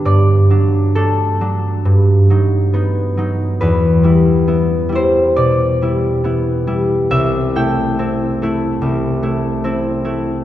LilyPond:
<<
  \new Staff \with { instrumentName = "Harp" } { \time 4/4 \key e \minor \tempo 4 = 69 <d'' e''>4 a'2. | b'4. c''8 d''2 | e''8 g''2.~ g''8 | }
  \new Staff \with { instrumentName = "Harp" } { \time 4/4 \key e \minor <g, d'>8 <fis d'>8 <a d'>8 <fis d'>8 g,8 <fis dis'>8 <b dis'>8 <fis dis'>8 | e,8 <g e'>8 <b e'>8 <g e'>8 b,8 <g e'>8 <b e'>8 <g e'>8 | c,8 <a e'>8 <c' e'>8 <a e'>8 c,8 <a e'>8 <c' e'>8 <a e'>8 | }
>>